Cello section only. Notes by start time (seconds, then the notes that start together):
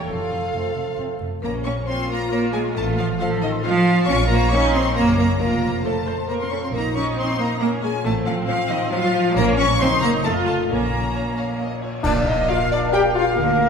0.10 F2
0.32 F2
0.55 F2
0.76 F2
0.99 F2
1.21 F2
1.43 A#3
1.65 C#4
1.87 C4
2.10 A#3
2.32 A#3
2.54 G#3
2.76 A3
2.98 F3
3.20 F3
3.43 D#3
3.64 F3
4.07 C#4
4.30 A#3
4.52 C#4
4.73 C4
4.95 A#3
5.18 A#3
5.40 A#3
5.84 A3
6.28 A#3
6.42 C4
6.51 C#4
6.63 C4
6.72 A#3
6.95 C#4
7.17 C4
7.39 A#3
7.60 A#3
7.83 G#3
8.04 A3
8.26 F3
8.48 F3
8.70 D#3
8.92 F3
9.00 F#3
9.08 F3
9.36 A#3
9.58 C#4
9.80 C4
10.03 A#3
10.25 A3
10.46 A3
10.70 A#3
12.05 A#2
13.37 D3